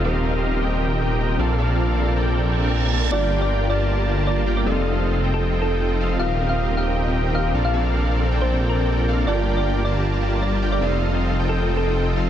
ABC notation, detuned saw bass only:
X:1
M:4/4
L:1/8
Q:"Swing 16ths" 1/4=156
K:Gm
V:1 name="Detuned saw bass" clef=bass
E,,,6- E,,, B,,,- | B,,,8 | G,,,8 | F,,,8 |
E,,,6- E,,, B,,,- | B,,,8 | G,,,8 | F,,,8 |]